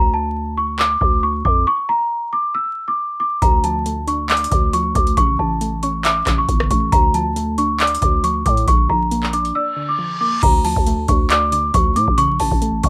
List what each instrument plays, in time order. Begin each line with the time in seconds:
Already playing: 808-style bass D2, celesta A#5
0.14 celesta A5
0.57 celesta C#6
0.79 celesta D6, clap
1.01 808-style bass D2, celesta D6, kick
1.23 celesta C#6
1.45 808-style bass F2, celesta D6, kick
1.67 celesta C#6
1.89 celesta A#5
2.33 celesta D6
2.55 celesta E6
2.88 celesta D6
3.20 celesta D6
3.42 808-style bass D2, synth pluck D3, celesta A#5, kick, closed hi-hat
3.64 synth pluck F3, celesta A5, closed hi-hat
3.86 synth pluck A3, closed hi-hat
4.07 synth pluck D4, celesta C#6, closed hi-hat
4.30 synth pluck D5, celesta D6, clap, closed hi-hat
4.37 closed hi-hat
4.44 closed hi-hat
4.51 808-style bass D2, synth pluck D3, celesta D6, kick, closed hi-hat
4.73 synth pluck F3, celesta C#6, closed hi-hat
4.95 808-style bass D2, synth pluck A3, celesta D6, kick, closed hi-hat
5.07 closed hi-hat
5.17 808-style bass A1, synth pluck C#3, celesta C#6, kick, closed hi-hat
5.39 808-style bass A1, synth pluck E3, celesta A5
5.61 synth pluck A3, closed hi-hat
5.83 synth pluck C#4, celesta C#6, closed hi-hat
6.04 synth pluck E5, celesta D6, clap, closed hi-hat
6.26 808-style bass A1, synth pluck C#3, kick, cross-stick, clap, closed hi-hat
6.38 celesta C#6
6.49 808-style bass G1, synth pluck E3, kick, closed hi-hat
6.60 cross-stick
6.70 808-style bass A1, synth pluck A3, celesta C#6, kick, closed hi-hat
6.92 808-style bass D2, synth pluck D3, celesta A#5, kick, closed hi-hat
7.14 synth pluck F3, celesta A5, closed hi-hat
7.36 synth pluck A3, closed hi-hat
7.58 synth pluck D4, celesta C#6, closed hi-hat
7.80 synth pluck D5, celesta D6, clap, closed hi-hat
7.87 closed hi-hat
7.95 closed hi-hat
8.01 808-style bass D2, synth pluck D3, celesta D6, kick, closed hi-hat
8.24 synth pluck F3, celesta C#6, closed hi-hat
8.46 808-style bass A2, synth pluck A3, celesta D6, kick, closed hi-hat
8.57 closed hi-hat
8.68 808-style bass A#1, synth pluck D3, celesta C#6, kick, closed hi-hat
8.89 808-style bass A#1, synth pluck F3, celesta A#5
9.11 synth pluck A#3, closed hi-hat
9.23 clap
9.33 synth pluck D4, celesta D6, closed hi-hat, open hi-hat
9.45 closed hi-hat
9.55 synth pluck D5, celesta E6, reverse cymbal
9.77 synth pluck D3
9.89 celesta D6
9.99 synth pluck F3
10.21 synth pluck A#3, celesta D6
10.43 808-style bass D2, synth pluck D3, celesta A#5, kick, closed hi-hat, crash
10.64 synth pluck F3, celesta A5, open hi-hat
10.76 808-style bass D2, kick
10.87 synth pluck A3, closed hi-hat
11.08 808-style bass D2, synth pluck D4, celesta C#6, kick, closed hi-hat
11.30 synth pluck D5, celesta D6, clap, closed hi-hat
11.52 synth pluck D3, celesta D6, closed hi-hat
11.74 808-style bass D2, synth pluck F3, celesta C#6, kick, closed hi-hat
11.96 808-style bass A2, synth pluck A3, celesta D6, closed hi-hat
12.08 808-style bass A1, kick
12.18 synth pluck C#3, celesta C#6, closed hi-hat
12.29 808-style bass A#1
12.40 808-style bass A1, synth pluck E3, celesta A5, open hi-hat
12.51 808-style bass A1, kick
12.62 synth pluck A3, closed hi-hat
12.83 808-style bass A2, synth pluck C#4, celesta C#6, kick, closed hi-hat